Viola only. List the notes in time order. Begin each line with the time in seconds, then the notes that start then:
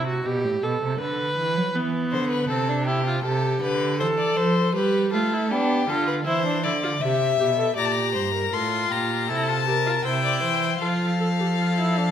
0.07 F#4
0.26 G4
0.63 A4
1.00 B4
1.75 B3
2.50 C4
2.69 D4
2.87 E4
3.06 F4
3.25 G4
4.00 A4
4.75 G4
5.13 F4
5.33 E4
5.51 D4
5.89 F4
6.27 E4
6.46 D4
6.64 E4
6.83 F4
7.02 G4
7.40 G4
7.59 A4
7.77 G4
8.54 F4
9.29 E4
9.48 F4
9.67 G4
9.86 F4
10.06 E4
10.82 F4
11.20 A4
11.40 G4
11.59 F4
11.78 E4
11.97 D4